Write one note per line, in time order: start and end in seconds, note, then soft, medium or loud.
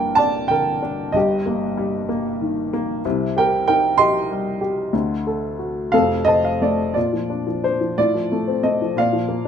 0.00 1.11 G1 medium
0.00 1.11 G2 medium
0.00 1.11 A#3 soft
0.00 0.18 D4 soft
0.00 0.51 A#4 medium
0.00 0.48 G5 medium
0.15 0.81 D4 soft
0.15 0.48 D5 medium
0.15 0.50 A5 medium
0.48 1.13 D3 soft
0.48 1.11 A#4 medium
0.48 1.09 G5 medium
0.82 1.13 D4 soft
1.12 3.00 G1 medium
1.12 3.01 G2 medium
1.12 2.70 G4 medium
1.12 2.68 D#5 medium
1.46 2.07 A#3 soft
1.77 3.01 G3 medium
2.09 2.72 A#3 medium
2.42 3.03 D#3 soft
2.73 3.04 A#3 medium
3.05 4.89 C2 medium
3.05 4.89 C3 medium
3.37 3.98 G4 soft
3.37 3.66 A#4 medium
3.37 3.66 G5 medium
3.68 4.90 D#4 medium
3.68 3.97 A#4 medium
3.68 4.00 G5 medium
3.98 4.59 G4 medium
3.98 6.23 D#5 medium
3.98 6.23 C6 loud
4.31 4.92 G3 medium
4.61 4.92 G4 medium
4.93 5.89 D2 medium
4.93 5.90 D3 medium
5.27 5.92 A4 soft
5.59 5.92 F#4 soft
5.92 6.92 F1 medium
5.92 6.93 F2 medium
5.92 6.92 A4 medium
5.92 6.28 F5 medium
6.25 6.94 C4 soft
6.25 6.96 D#5 loud
6.25 6.43 A5 medium
6.44 6.60 F5 medium
6.62 6.95 A3 soft
6.62 6.92 D5 medium
6.94 7.94 A#2 soft
6.94 7.94 F4 medium
6.94 7.65 D5 medium
7.13 7.45 F3 soft
7.30 7.62 D4 soft
7.47 7.79 F3 soft
7.63 7.96 D4 soft
7.63 7.95 C5 medium
7.81 7.97 F3 soft
7.98 8.94 A2 medium
7.98 8.94 F4 medium
7.98 8.60 D5 medium
8.14 8.80 F3 soft
8.32 8.62 A3 soft
8.47 8.95 C4 soft
8.63 8.96 A3 soft
8.63 8.94 D#5 medium
8.82 8.97 F3 soft
8.97 9.48 A#2 medium
8.97 9.48 D5 medium
8.97 9.48 F5 medium
9.13 9.48 F3 soft
9.28 9.48 A#3 soft